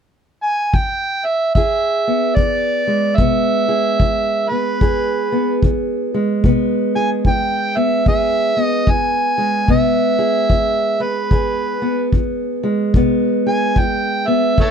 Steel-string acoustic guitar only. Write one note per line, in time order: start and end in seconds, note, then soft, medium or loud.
1.56 2.31 E2 medium
1.56 3.68 G#4 medium
2.07 3.19 B3 medium
2.38 3.13 E3 medium
2.87 6.14 G#3 medium
3.19 3.94 B2 medium
3.19 4.51 B3 medium
3.69 4.81 G#4 medium
4.01 4.76 E3 medium
4.51 5.32 B3 medium
4.81 5.56 E2 medium
4.81 6.95 G#4 medium
5.32 6.45 B3 medium
5.64 6.38 E3 medium
6.14 9.37 G#3 medium
6.44 7.19 B2 medium
6.44 7.76 B3 medium
6.96 8.08 G#4 medium
7.27 8.01 E3 medium
7.77 8.56 B3 medium
8.08 8.82 E2 medium
8.08 10.17 G#4 medium
8.57 9.69 B3 medium
8.88 9.63 E3 medium
9.38 12.62 G#3 medium
9.69 10.44 B2 medium
9.69 10.99 B3 medium
10.19 11.28 G#4 medium
10.50 11.25 E3 medium
11.00 11.81 B3 medium
11.31 12.07 E2 medium
11.31 13.45 G#4 medium
11.82 12.95 B3 medium
12.13 12.89 E3 medium
12.63 14.59 G#3 medium
12.96 13.71 B2 medium
12.96 14.26 B3 medium
13.46 14.56 G#4 medium
13.77 14.53 E3 medium
14.28 14.59 B3 medium
14.59 14.71 A2 medium
14.59 14.71 A4 medium